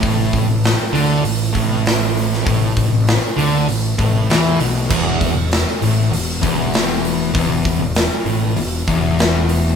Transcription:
<<
  \new Staff \with { instrumentName = "Distorted electric guitar" } { \clef bass \time 4/4 \key a \major \tempo 4 = 98 a,8. a,8 r16 d8 a,8 a,4. | a,8. a,8 r16 d8 a,8 a,8 e8 b,8 | e,8. e,8 r16 a,8 e,8 e,4. | e,8. e,8 r16 a,8 e,8 e,4. | }
  \new Staff \with { instrumentName = "Fingered electric bass" } { \clef bass \time 4/4 \key a \major a,,8. a,,8 r16 d,8 a,,8 a,,4. | a,,8. a,,8 r16 d,8 a,,8 a,,8 e,8 b,,8 | e,,8. e,,8 r16 a,,8 e,,8 e,,4. | e,,8. e,,8 r16 a,,8 e,,8 e,,4. | }
  \new DrumStaff \with { instrumentName = "Drums" } \drummode { \time 4/4 <hho bd>8 <hho bd>8 <hho sn>8 hho8 hho8 <hho bd>8 <hho sn>8 hho16 sn16 | <hho bd>8 <hho bd>8 <hho sn>8 hho8 hho8 <hho bd>8 <hho sn>8 hho8 | <cymc bd>8 <hho bd>8 <hho sn>8 hho8 hho8 <hho bd>8 <hho sn>8 hho8 | <hho bd>8 <hho bd>8 <hho sn>8 hho8 hho8 <hho bd>8 <hho sn>8 hho8 | }
>>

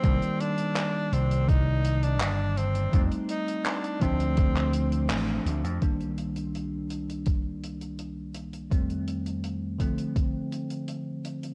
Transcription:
<<
  \new Staff \with { instrumentName = "Tenor saxophone" } { \time 4/4 \key c \dorian \tempo 4 = 83 c'8 d'4 c'8 ees'8. d'8. c'8~ | c'16 r16 ees'8 d'8 c'4. r4 | r1 | r1 | }
  \new Staff \with { instrumentName = "Tine electric piano" } { \time 4/4 \key c \dorian <ees g bes d''>1 | <g a c' ees'>4. <f a c' d'>2~ <f a c' d'>8 | <c, ees g bes d'>1 | <f, ees g a c'>4. <d f a c'>2~ <d f a c'>8 | }
  \new Staff \with { instrumentName = "Slap bass" } { \clef bass \time 4/4 \key c \dorian c,16 r4 r16 c,4. g,,4 | f,16 r4 r16 d,4. a,,16 r16 d,16 f,16 | r1 | r1 | }
  \new DrumStaff \with { instrumentName = "Drums" } \drummode { \time 4/4 <hh bd>16 hh16 hh16 hh16 <hc hh>8 hh16 hh16 <hh bd>8 hh16 hh16 <hc hh>8 hh16 hh16 | <hh bd>16 hh16 hh16 hh16 <hc hh>16 hh16 <hh bd>16 hh16 <hh bd>16 <hc hh>16 hh16 hh16 <hc hh>8 hh16 hh16 | <hh bd>16 hh16 hh16 hh16 hh8 hh16 hh16 <hh bd>8 hh16 hh16 hh8 hh16 hh16 | <hh bd>16 hh16 hh16 hh16 hh8 <hh bd>16 hh16 <hh bd>8 hh16 hh16 hh8 hh16 hh16 | }
>>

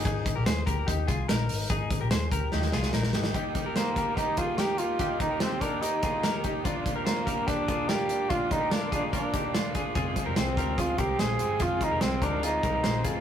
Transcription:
<<
  \new Staff \with { instrumentName = "Clean electric guitar" } { \time 4/4 \key ees \major \tempo 4 = 145 <ees' aes'>8. <g' bes'>16 <aes' c''>8 <g' bes'>8 <ees' g'>8 <f' aes'>8 <ees' bes'>4 | <ees' aes'>8. <g' bes'>16 <aes' c''>8 <g' bes'>8 <ees' g'>8 <f' aes'>8 <ees' bes'>8 <ees' g'>8 | <ees' g'>8. <g' bes'>16 <g' c''>8 <g' bes'>8 <ees' g'>8 <f' aes'>8 <g' bes'>4 | <ees' g'>8. <g' bes'>16 <g' c''>8 <g' bes'>8 <ees' g'>8 <f' aes'>8 <g' bes'>8 <ees' g'>8 |
<d' f'>8. <g' bes'>16 <f' c''>8 <g' bes'>8 <d' g'>8 <f' aes'>8 <f' bes'>4 | <d' f'>8. <ees' g'>16 <f' bes'>8 <f' aes'>8 <f' bes'>8 <ees' g'>8 <d' f'>8 <f' aes'>8 | <f' aes'>8. <g' bes'>16 <aes' c''>8 <g' bes'>8 <f' aes'>8 <g' bes'>8 <aes' c''>4 | <f' aes'>8. <g' bes'>16 <aes' c''>8 <g' bes'>8 <f' aes'>8 <g' bes'>8 <aes' c''>8 <f' aes'>8 | }
  \new Staff \with { instrumentName = "Cor anglais" } { \time 4/4 \key ees \major r1 | r1 | r4 bes4 ees'8 f'8 g'8 f'8~ | f'8 ees'8 c'8 d'8 ees'4. r8 |
r4 bes4 d'4 g'4 | f'8 ees'8 d'8 d'8 d'4. r8 | r4 c'4 f'8 g'8 aes'4 | f'8 ees'8 c'8 d'8 ees'4. r8 | }
  \new Staff \with { instrumentName = "Overdriven electric guitar" } { \time 4/4 \key ees \major r1 | r1 | <ees bes ees' g'>8 <bes ees' g'>8 <ees bes ees' g'>8 <bes ees' g'>8 <ees bes ees' g'>8 <bes ees' g'>8 <ees bes ees' g'>8 <bes ees' g'>8 | <ees bes ees' g'>8 <bes ees' g'>8 <ees bes ees' g'>8 <bes ees' g'>8 <ees bes ees' g'>8 <bes ees' g'>8 <ees bes ees' g'>8 <bes ees' g'>8 |
<bes, f bes d' f'>8 <bes d' f'>8 <f bes d' f'>8 <bes d' f'>8 <bes, f bes d' f'>8 <bes d' f'>8 <f bes d' f'>8 <bes d' f'>8 | <bes, f bes d' f'>8 <bes d' f'>8 <f bes d' f'>8 <bes d' f'>8 <bes, f bes d' f'>8 <bes d' f'>8 <f bes d' f'>8 <bes d' f'>8 | <f, c f aes c' f'>8 <f aes c' f'>8 <f aes c' f'>8 <f aes c' f'>8 <f, c f aes c' f'>8 <f aes c' f'>8 <f aes c' f'>8 <f aes c' f'>8 | <f, c f aes c' f'>8 <f aes c' f'>8 <f aes c' f'>8 <f aes c' f'>8 <f, c f aes c' f'>8 <f aes c' f'>8 <f aes c' f'>8 <f aes c' f'>8 | }
  \new Staff \with { instrumentName = "Fingered electric bass" } { \clef bass \time 4/4 \key ees \major aes,,8. bes,,16 ees,8 d,8 ees,8 c,8 bes,,8 aes,,8 | aes,,8. bes,,16 ees,8 d,8 ees,8 c,8 bes,,8 aes,,8 | r1 | r1 |
r1 | r1 | f,,8 r16 f,,16 c,8 d,4 c,8 bes,,8 g,,8 | f,,8 r16 f,,16 c,8 d,4 c,8 bes,,8 r8 | }
  \new DrumStaff \with { instrumentName = "Drums" } \drummode { \time 4/4 <hh bd>8 <hh bd>8 <hh sn>8 <hh bd>8 <hh bd>8 <hh bd>8 <hh sn>8 hho8 | <hh bd>8 <hh bd>8 <hh sn>8 <hh bd>8 sn16 sn16 sn16 sn16 sn16 sn16 sn16 sn16 | <hh bd>8 <hh bd>8 <hh sn>8 <hh bd>8 <hh bd>8 <hh bd>8 <hh sn>8 hh8 | <hh bd>8 <hh bd>8 <hh sn>8 <hh bd>8 hh8 <hh bd>8 <hh sn>8 <hh bd>8 |
<hh bd>8 <hh bd>8 <hh sn>8 <hh bd>8 <hh bd>8 <hh bd>8 <hh sn>8 hh8 | <hh bd>8 <hh bd>8 <hh sn>8 <hh bd>8 <hh bd>8 <hh bd>8 <hh sn>8 <hh bd>8 | <hh bd>8 <hh bd>8 <hh sn>8 <hh bd>8 <hh bd>8 <hh bd>8 <hh sn>8 hh8 | <hh bd>8 <hh bd>8 <hh sn>8 <hh bd>8 hh8 <hh bd>8 <hh sn>8 <hh bd>8 | }
>>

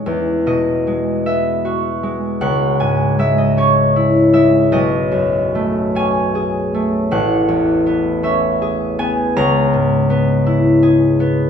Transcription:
<<
  \new Staff \with { instrumentName = "Harp" } { \time 6/8 \key e \major \tempo 4. = 52 e''8 dis''4 e''4. | fis''8 gis''8 e''16 dis''16 cis''4 e''8 | dis''4. gis''4. | fis''4. e''4 gis''8 |
\key cis \dorian ais''2. | }
  \new Staff \with { instrumentName = "Harp" } { \time 6/8 \key e \major <e, gis>8 b,8 gis8 b8 fis'8 gis8 | cis,8 gis,8 gis8 cis'8 e'8 gis8 | b,,8 fis,8 a8 cis'8 gis'8 a8 | a,,8 e,8 b8 cis'8 gis'8 b8 |
\key cis \dorian cis,8 gis,8 b8 e'8 gis'8 b8 | }
>>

